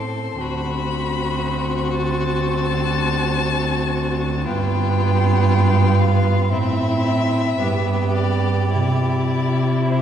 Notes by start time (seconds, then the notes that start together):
Already playing: A2 C4 A4 C6
0.39 D2 C4 F#4 B5
1.95 A5
4.46 G2 B3 F4 G5
6.00 F5
6.51 A2 C4 E4 E5
7.61 G2 B3 G4
8.15 D5
8.73 C3 E4 D5
9.89 G4 C5